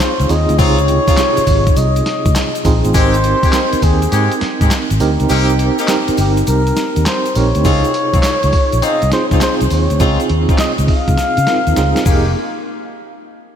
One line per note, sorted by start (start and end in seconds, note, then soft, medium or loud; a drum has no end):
0.00 0.29 C4 loud
0.00 0.30 D#4 medium
0.00 0.30 F4 medium
0.00 0.31 G#4 loud
0.00 0.32 C5 medium
0.00 snare loud
0.00 clap loud
0.00 closed hi-hat medium
0.00 tambourine medium
0.00 shaker medium
0.19 0.28 C#2 medium
0.19 closed hi-hat medium
0.19 shaker medium
0.29 0.45 D#2 loud
0.29 0.53 C4 medium
0.29 0.53 D#4 medium
0.29 0.54 F4 medium
0.29 0.54 G#4 medium
0.29 0.59 D#5 loud
0.29 open hi-hat medium
0.29 tambourine medium
0.29 shaker medium
0.49 0.57 D2 loud
0.49 closed hi-hat medium
0.49 shaker soft
0.58 0.98 C#2 loud
0.58 1.05 C3 medium
0.58 0.79 C4 loud
0.58 0.79 C#4 medium
0.58 0.79 D#4 medium
0.58 1.05 D#4 medium
0.58 0.79 F4 loud
0.58 1.06 F4 medium
0.58 1.06 G#4 medium
0.58 1.79 C#5 loud
0.58 kick loud
0.58 closed hi-hat medium
0.58 tambourine medium
0.58 shaker medium
0.79 closed hi-hat soft
0.79 shaker soft
0.88 closed hi-hat medium
0.88 shaker medium
1.08 1.18 C4 medium
1.08 1.18 C#4 medium
1.08 1.18 D#4 medium
1.08 1.19 F4 medium
1.08 kick loud
1.08 closed hi-hat medium
1.08 shaker medium
1.17 2.03 C3 medium
1.17 2.03 D#4 medium
1.17 2.03 F4 medium
1.17 2.04 G#4 medium
1.17 snare loud
1.17 clap medium
1.17 closed hi-hat medium
1.17 tambourine loud
1.17 shaker medium
1.37 muted fingered electric bass stroke medium
1.37 closed hi-hat medium
1.37 shaker soft
1.47 1.70 G#1 medium
1.47 kick medium
1.47 open hi-hat medium
1.47 tambourine medium
1.47 shaker medium
1.67 kick loud
1.67 closed hi-hat medium
1.67 shaker medium
1.76 2.00 C2 medium
1.76 2.65 D#5 medium
1.76 closed hi-hat medium
1.76 tambourine medium
1.76 shaker medium
1.96 closed hi-hat medium
1.96 shaker soft
2.06 snare medium
2.06 closed hi-hat medium
2.06 tambourine medium
2.26 2.33 C#2 medium
2.26 kick loud
2.26 closed hi-hat medium
2.26 shaker medium
2.35 snare loud
2.35 clap loud
2.35 closed hi-hat medium
2.35 tambourine medium
2.35 shaker medium
2.55 closed hi-hat soft
2.55 shaker medium
2.65 2.80 A#1 loud
2.65 2.89 C4 medium
2.65 2.89 D#4 medium
2.65 2.89 F4 medium
2.65 2.89 G#4 loud
2.65 kick loud
2.65 open hi-hat medium
2.65 tambourine medium
2.65 shaker medium
2.85 2.92 A1 loud
2.85 closed hi-hat soft
2.85 shaker soft
2.94 3.33 G#1 loud
2.94 3.14 G#3 loud
2.94 3.14 C4 medium
2.94 3.40 C4 medium
2.94 3.14 D#4 medium
2.94 3.41 D#4 medium
2.94 3.14 G4 loud
2.94 3.41 G4 medium
2.94 3.41 A#4 medium
2.94 3.85 C5 loud
2.94 kick loud
2.94 closed hi-hat medium
2.94 tambourine medium
2.94 shaker medium
3.14 closed hi-hat soft
3.14 shaker soft
3.24 closed hi-hat medium
3.24 shaker soft
3.43 3.54 G#3 medium
3.43 3.54 C4 medium
3.43 3.54 D#4 medium
3.43 3.54 G4 medium
3.43 kick loud
3.43 closed hi-hat medium
3.43 shaker soft
3.53 4.38 C4 medium
3.53 4.39 D#4 medium
3.53 4.39 A#4 medium
3.53 4.39 G5 medium
3.53 snare loud
3.53 clap loud
3.53 closed hi-hat medium
3.53 tambourine loud
3.53 shaker medium
3.73 muted fingered electric bass stroke soft
3.73 closed hi-hat medium
3.73 shaker medium
3.82 4.06 D#2 medium
3.82 4.42 G#4 loud
3.82 kick medium
3.82 open hi-hat medium
3.82 tambourine medium
3.82 shaker soft
4.02 closed hi-hat medium
4.02 shaker medium
4.12 4.28 G#2 loud
4.12 4.32 G#3 medium
4.12 4.32 C4 medium
4.12 4.32 D#4 medium
4.12 4.32 G4 medium
4.12 closed hi-hat medium
4.12 tambourine medium
4.12 shaker medium
4.32 closed hi-hat medium
4.32 shaker soft
4.41 muted fingered electric bass stroke medium
4.41 snare medium
4.41 closed hi-hat medium
4.41 tambourine medium
4.61 4.69 G#2 loud
4.61 4.71 G#3 medium
4.61 4.71 C4 medium
4.61 4.71 D#4 medium
4.61 4.72 G4 medium
4.61 kick medium
4.61 closed hi-hat soft
4.61 shaker medium
4.71 snare loud
4.71 clap loud
4.71 closed hi-hat medium
4.71 tambourine medium
4.71 shaker medium
4.90 4.98 G#1 loud
4.90 closed hi-hat soft
4.90 shaker medium
5.00 5.16 D2 medium
5.00 5.24 C4 medium
5.00 5.24 D#4 medium
5.00 5.24 G4 medium
5.00 5.24 A#4 loud
5.00 open hi-hat medium
5.00 tambourine medium
5.00 shaker medium
5.20 5.28 C#2 loud
5.20 closed hi-hat medium
5.20 shaker soft
5.29 5.69 C2 loud
5.29 5.49 A#3 loud
5.29 5.49 C4 loud
5.29 5.76 C4 medium
5.29 5.49 D#4 medium
5.29 5.76 D#4 medium
5.29 5.50 G4 loud
5.29 5.76 G4 medium
5.29 5.76 A#4 loud
5.29 closed hi-hat medium
5.29 tambourine medium
5.29 shaker medium
5.49 closed hi-hat soft
5.49 shaker medium
5.59 closed hi-hat medium
5.59 shaker soft
5.78 5.89 A#3 medium
5.78 5.89 C4 medium
5.78 5.89 D#4 medium
5.78 5.89 G4 medium
5.78 closed hi-hat medium
5.78 shaker medium
5.88 6.74 C4 medium
5.88 6.74 D#4 medium
5.88 6.74 G4 medium
5.88 6.74 A#4 medium
5.88 snare loud
5.88 clap loud
5.88 closed hi-hat medium
5.88 tambourine loud
5.88 shaker medium
6.08 muted fingered electric bass stroke medium
6.08 closed hi-hat medium
6.08 shaker soft
6.17 6.41 G1 medium
6.17 6.32 G4 medium
6.17 open hi-hat medium
6.17 tambourine medium
6.17 shaker medium
6.37 closed hi-hat medium
6.37 shaker medium
6.47 6.71 C2 medium
6.47 7.03 A#4 loud
6.47 closed hi-hat medium
6.47 tambourine medium
6.47 shaker medium
6.67 closed hi-hat medium
6.67 shaker soft
6.76 snare medium
6.76 closed hi-hat medium
6.76 tambourine medium
6.76 shaker soft
6.96 7.04 D#2 medium
6.96 closed hi-hat medium
6.96 shaker medium
7.06 7.38 C5 medium
7.06 snare loud
7.06 clap loud
7.06 closed hi-hat medium
7.06 tambourine medium
7.06 shaker medium
7.26 closed hi-hat soft
7.26 shaker medium
7.35 7.51 A#1 medium
7.35 7.59 C4 medium
7.35 7.59 D#4 medium
7.35 7.60 G4 medium
7.35 7.60 A#4 medium
7.35 8.85 C#5 loud
7.35 open hi-hat medium
7.35 tambourine medium
7.35 shaker medium
7.55 7.63 D2 loud
7.55 closed hi-hat medium
7.55 shaker soft
7.64 7.80 C#2 loud
7.64 8.50 C3 medium
7.64 7.85 C4 loud
7.64 7.85 C#4 medium
7.64 7.85 D#4 medium
7.64 8.51 D#4 medium
7.64 7.74 E4 soft
7.64 7.85 F4 loud
7.64 8.51 G#4 medium
7.64 kick loud
7.64 closed hi-hat medium
7.64 tambourine medium
7.64 shaker medium
7.84 closed hi-hat soft
7.84 shaker medium
7.94 closed hi-hat medium
7.94 tambourine medium
8.14 8.21 C2 medium
8.14 8.24 C4 medium
8.14 8.24 C#4 medium
8.14 8.24 D#4 medium
8.14 8.25 F4 medium
8.14 kick loud
8.14 closed hi-hat medium
8.14 shaker medium
8.23 muted fingered electric bass stroke soft
8.23 snare loud
8.23 clap medium
8.23 closed hi-hat medium
8.23 tambourine loud
8.23 shaker medium
8.43 8.51 C#2 medium
8.43 closed hi-hat medium
8.43 shaker soft
8.53 kick medium
8.53 open hi-hat medium
8.53 tambourine medium
8.72 8.81 A#1 medium
8.72 closed hi-hat medium
8.72 shaker soft
8.82 9.02 C4 medium
8.82 9.02 C#4 medium
8.82 9.02 D#4 medium
8.82 9.03 F4 medium
8.82 9.13 D#5 loud
8.82 closed hi-hat medium
8.82 tambourine medium
8.82 shaker medium
9.02 9.10 C2 medium
9.02 closed hi-hat medium
9.02 shaker soft
9.12 9.36 C4 medium
9.12 9.36 D#4 medium
9.12 9.36 F4 medium
9.12 9.36 G#4 medium
9.12 9.26 C5 medium
9.12 snare medium
9.12 closed hi-hat medium
9.12 shaker soft
9.31 9.39 C#2 loud
9.31 9.42 C4 medium
9.31 9.42 C#4 medium
9.31 9.42 D#4 medium
9.31 9.42 F4 medium
9.31 kick loud
9.31 closed hi-hat soft
9.31 shaker medium
9.41 9.88 C4 medium
9.41 9.88 D#4 medium
9.41 9.88 F4 medium
9.41 9.88 G#4 medium
9.41 9.56 C5 loud
9.41 snare loud
9.41 clap loud
9.41 closed hi-hat medium
9.41 tambourine medium
9.41 shaker medium
9.61 9.69 C2 medium
9.61 closed hi-hat soft
9.61 shaker medium
9.70 9.86 D#2 medium
9.70 10.26 C#5 medium
9.70 open hi-hat medium
9.70 tambourine medium
9.70 shaker medium
9.90 9.98 D2 medium
9.90 closed hi-hat medium
9.90 shaker soft
10.00 10.16 C#2 loud
10.00 10.20 C4 loud
10.00 10.86 C4 medium
10.00 10.20 C#4 medium
10.00 10.20 D#4 medium
10.00 10.86 D#4 medium
10.00 10.20 F4 loud
10.00 10.86 F4 medium
10.00 10.86 G#4 medium
10.00 kick loud
10.00 closed hi-hat medium
10.00 shaker medium
10.20 closed hi-hat soft
10.20 shaker soft
10.29 10.45 D#2 medium
10.29 closed hi-hat medium
10.49 10.59 C4 medium
10.49 10.60 C#4 medium
10.49 10.60 D#4 medium
10.49 10.60 F4 medium
10.49 kick loud
10.49 closed hi-hat medium
10.49 shaker medium
10.58 10.73 D#5 loud
10.58 snare loud
10.58 clap medium
10.58 closed hi-hat medium
10.58 shaker medium
10.78 10.86 C#2 medium
10.78 closed hi-hat medium
10.78 shaker soft
10.88 12.02 F5 loud
10.88 kick medium
10.88 open hi-hat medium
11.08 11.16 C#2 medium
11.08 kick medium
11.08 closed hi-hat medium
11.08 shaker soft
11.17 snare medium
11.17 closed hi-hat medium
11.17 shaker medium
11.37 11.45 C#3 loud
11.37 closed hi-hat medium
11.37 shaker soft
11.47 11.71 C4 medium
11.47 11.71 D#4 medium
11.47 11.71 F4 medium
11.47 11.72 A#4 medium
11.47 snare medium
11.47 closed hi-hat medium
11.47 shaker soft
11.67 11.75 D#2 loud
11.67 closed hi-hat soft
11.67 shaker medium
11.76 11.92 C#2 medium
11.76 12.06 C4 medium
11.76 12.05 D#4 medium
11.76 12.06 F4 medium
11.76 12.05 G#4 medium
11.76 snare medium
11.76 closed hi-hat medium
11.76 shaker medium
11.96 snare medium
11.96 closed hi-hat soft
11.96 shaker medium
12.05 12.33 F1 loud
12.05 12.29 G#3 medium
12.05 12.29 A#3 medium
12.05 12.34 A#3 medium
12.05 12.30 D#4 medium
12.05 12.34 D#4 medium
12.05 12.30 G4 medium
12.05 12.34 G4 medium
12.05 12.34 G#4 medium
12.05 12.34 F5 medium
12.05 kick loud
12.05 crash medium
12.05 shaker medium